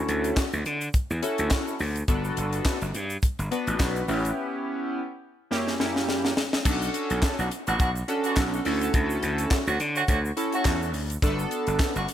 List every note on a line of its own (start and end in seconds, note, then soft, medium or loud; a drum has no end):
0.00 0.43 C#4 medium
0.00 0.43 E4 medium
0.00 0.43 F#4 medium
0.00 0.44 A4 medium
0.08 0.30 D2 medium
0.08 closed hi-hat medium
0.08 shaker medium
0.24 closed hi-hat medium
0.24 shaker medium
0.37 kick loud
0.37 snare loud
0.37 clap medium
0.37 closed hi-hat loud
0.37 shaker medium
0.53 0.63 D2 loud
0.53 shaker medium
0.65 0.88 D3 loud
0.65 closed hi-hat medium
0.65 shaker soft
0.81 closed hi-hat soft
0.81 shaker medium
0.94 kick loud
0.94 closed hi-hat medium
0.94 shaker medium
1.10 1.20 E2 medium
1.10 shaker medium
1.22 1.74 C#4 medium
1.22 1.74 E4 medium
1.22 1.75 F#4 medium
1.22 1.75 A4 medium
1.22 closed hi-hat medium
1.22 shaker medium
1.38 1.49 D2 medium
1.38 closed hi-hat medium
1.38 shaker medium
1.50 kick loud
1.50 snare loud
1.50 clap medium
1.50 closed hi-hat medium
1.50 shaker medium
1.68 shaker soft
1.79 2.02 D2 medium
1.79 open hi-hat medium
1.79 shaker soft
1.96 closed hi-hat medium
1.96 shaker medium
2.08 2.30 G1 loud
2.08 2.78 B3 medium
2.08 2.78 D4 medium
2.08 2.78 F#4 medium
2.08 2.78 A4 medium
2.08 kick loud
2.08 closed hi-hat medium
2.08 shaker medium
2.25 shaker medium
2.37 2.59 G1 medium
2.37 closed hi-hat medium
2.37 shaker medium
2.53 closed hi-hat medium
2.53 shaker medium
2.65 kick loud
2.65 snare loud
2.65 clap loud
2.65 closed hi-hat medium
2.65 shaker medium
2.81 2.91 G1 loud
2.81 closed hi-hat soft
2.81 shaker medium
2.94 3.16 G2 medium
2.94 closed hi-hat medium
2.94 shaker soft
3.10 closed hi-hat soft
3.10 shaker medium
3.22 kick loud
3.22 closed hi-hat medium
3.22 shaker medium
3.39 3.48 G1 loud
3.39 closed hi-hat soft
3.39 shaker medium
3.51 4.03 B3 medium
3.51 4.03 D4 medium
3.51 4.03 F#4 medium
3.51 4.03 B4 loud
3.51 closed hi-hat medium
3.51 shaker soft
3.67 3.77 A1 medium
3.67 closed hi-hat medium
3.67 shaker medium
3.79 4.02 B1 medium
3.79 kick loud
3.79 snare loud
3.79 clap medium
3.79 closed hi-hat medium
3.79 shaker medium
3.96 closed hi-hat soft
3.96 shaker soft
4.08 4.30 A1 loud
4.08 5.00 B3 medium
4.08 5.01 C#4 medium
4.08 5.01 E4 medium
4.08 5.01 G4 medium
4.08 open hi-hat medium
4.08 shaker soft
4.25 closed hi-hat medium
4.25 shaker medium
5.51 5.74 F#2 medium
5.51 5.75 A#3 medium
5.51 5.75 C#4 medium
5.51 5.75 E4 medium
5.51 5.75 G4 loud
5.51 snare medium
5.68 snare medium
5.79 6.31 F#2 medium
5.79 6.32 A#3 medium
5.79 6.32 C#4 medium
5.79 6.32 E4 medium
5.79 6.32 G4 medium
5.79 snare medium
5.96 snare medium
6.09 snare medium
6.25 snare medium
6.37 snare loud
6.53 snare medium
6.65 6.87 B1 loud
6.65 7.35 C#4 medium
6.65 7.35 D4 medium
6.65 7.35 F#4 medium
6.65 7.35 A4 loud
6.65 kick loud
6.65 crash loud
6.65 shaker medium
6.82 shaker medium
6.94 closed hi-hat medium
6.94 shaker medium
7.10 7.20 B1 medium
7.10 closed hi-hat medium
7.10 shaker soft
7.22 kick loud
7.22 snare loud
7.22 clap medium
7.22 closed hi-hat medium
7.22 shaker medium
7.39 7.48 B1 medium
7.39 7.49 B3 medium
7.39 7.49 D4 medium
7.39 7.49 F#4 medium
7.39 shaker medium
7.51 closed hi-hat medium
7.51 shaker medium
7.67 7.77 A1 medium
7.67 7.75 B3 loud
7.67 7.75 D4 loud
7.67 7.75 F#4 loud
7.67 closed hi-hat soft
7.67 shaker medium
7.80 8.02 B1 medium
7.80 7.90 B3 loud
7.80 7.90 D4 loud
7.80 7.90 F#4 loud
7.80 kick loud
7.80 closed hi-hat medium
7.80 shaker medium
7.95 closed hi-hat soft
7.95 shaker medium
8.08 8.60 C#4 medium
8.08 8.60 D4 medium
8.08 8.60 F#4 medium
8.08 8.60 A4 loud
8.08 closed hi-hat medium
8.08 shaker medium
8.24 8.63 B3 medium
8.24 8.63 D4 loud
8.24 8.63 F#4 loud
8.24 closed hi-hat medium
8.24 shaker medium
8.36 8.59 B1 loud
8.36 kick loud
8.36 snare loud
8.36 clap medium
8.36 closed hi-hat medium
8.36 shaker medium
8.53 shaker medium
8.65 8.88 D2 medium
8.65 9.57 C#4 medium
8.65 9.58 E4 medium
8.65 9.58 F#4 medium
8.65 9.58 A4 loud
8.65 open hi-hat medium
8.65 shaker soft
8.81 closed hi-hat medium
8.81 shaker medium
8.94 9.16 D2 loud
8.94 kick loud
8.94 closed hi-hat medium
8.94 shaker medium
9.10 shaker medium
9.23 9.45 D2 loud
9.23 closed hi-hat medium
9.23 shaker medium
9.38 closed hi-hat medium
9.38 shaker medium
9.51 kick loud
9.51 snare loud
9.51 clap loud
9.51 closed hi-hat medium
9.51 shaker medium
9.67 9.77 D2 loud
9.67 9.78 A3 medium
9.67 9.78 C#4 medium
9.67 9.78 F#4 loud
9.67 shaker medium
9.80 10.02 D3 loud
9.80 closed hi-hat medium
9.80 shaker medium
9.95 10.04 A3 loud
9.95 10.04 C#4 medium
9.95 10.04 F#4 loud
9.95 closed hi-hat soft
9.95 shaker medium
10.08 10.30 D2 medium
10.08 10.19 A3 loud
10.08 10.19 C#4 loud
10.08 10.19 F#4 loud
10.08 kick loud
10.08 closed hi-hat medium
10.08 shaker medium
10.25 shaker medium
10.37 10.89 C#4 medium
10.37 10.89 E4 medium
10.37 10.89 F#4 medium
10.37 10.89 A4 loud
10.37 closed hi-hat medium
10.37 shaker medium
10.52 10.92 A3 loud
10.52 10.92 C#4 loud
10.52 10.92 F#4 loud
10.52 closed hi-hat medium
10.52 shaker medium
10.65 10.94 E2 medium
10.65 kick loud
10.65 snare loud
10.65 clap medium
10.65 closed hi-hat medium
10.65 shaker medium
10.82 shaker medium
10.94 11.16 D2 medium
10.94 open hi-hat medium
10.94 shaker soft
11.10 closed hi-hat medium
11.10 shaker medium
11.22 11.45 G1 loud
11.22 11.30 A3 medium
11.22 11.92 D4 medium
11.22 11.92 F#4 medium
11.22 11.92 A4 loud
11.22 kick loud
11.22 closed hi-hat medium
11.22 shaker medium
11.29 11.95 B3 medium
11.39 shaker medium
11.51 closed hi-hat medium
11.51 shaker medium
11.67 11.77 G1 medium
11.67 closed hi-hat medium
11.67 shaker soft
11.79 kick loud
11.79 snare loud
11.79 clap medium
11.79 closed hi-hat loud
11.79 shaker medium
11.96 12.05 G1 medium
11.96 12.06 B3 medium
11.96 12.06 D4 medium
11.96 12.06 F#4 loud
11.96 closed hi-hat soft
11.96 shaker medium
12.08 closed hi-hat medium
12.08 shaker medium